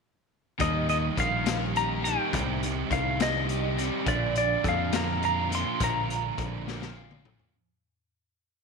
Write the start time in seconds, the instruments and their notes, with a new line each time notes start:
0.58 picked electric bass D#2, distorted electric guitar D#3 G3 A#3, overdriven electric guitar D#3, clean electric guitar D#5, kick, closed hi-hat
0.62 distorted electric guitar D#4
0.89 clean electric guitar D#5, closed hi-hat
1.17 picked electric bass A#1, overdriven electric guitar D#3, clean electric guitar F5, kick, closed hi-hat
1.45 overdriven electric guitar A#3, snare, closed hi-hat
1.75 overdriven electric guitar G4, clean electric guitar A#5, closed hi-hat
2.02 distorted electric guitar D#3 G3 A#3 D#4, overdriven electric guitar A#3, clean electric guitar G5, closed hi-hat
2.31 picked electric bass C2, distorted electric guitar C3 G3 C4 D#4, overdriven electric guitar C3, kick, closed hi-hat
2.63 closed hi-hat
2.90 picked electric bass C2, overdriven electric guitar D#3, clean electric guitar F5, kick, closed hi-hat
3.20 overdriven electric guitar G3, clean electric guitar D#5, snare, closed hi-hat
3.49 overdriven electric guitar G4, closed hi-hat
3.77 distorted electric guitar C3 G3 C4 D#4, overdriven electric guitar G3, closed hi-hat
4.05 picked electric bass A#1, distorted electric guitar A#2 D3 F3 A#3 D4, overdriven electric guitar A#2, clean electric guitar D5, kick, closed hi-hat
4.36 clean electric guitar D5, closed hi-hat
4.64 picked electric bass F2, overdriven electric guitar D3, kick, closed hi-hat
4.69 clean electric guitar F5
4.92 overdriven electric guitar A#3, clean electric guitar A#5, snare, closed hi-hat
5.22 overdriven electric guitar F4, clean electric guitar A#5, closed hi-hat
5.50 distorted electric guitar A#2 D3 F3 A#3 D4, overdriven electric guitar A#3, closed hi-hat
5.55 clean electric guitar C6
5.78 picked electric bass A#1, distorted electric guitar A#2 D3 F3 A#3 D4, overdriven electric guitar A#2, kick, closed hi-hat
5.84 clean electric guitar A#5
6.10 closed hi-hat
6.38 picked electric bass A#1, overdriven electric guitar D3, kick, closed hi-hat
6.66 overdriven electric guitar A#3, snare
6.82 snare
6.96 overdriven electric guitar F4
7.11 mid tom
7.24 distorted electric guitar A#2 D3 F3 A#3 D4, overdriven electric guitar A#3, mid tom
7.40 floor tom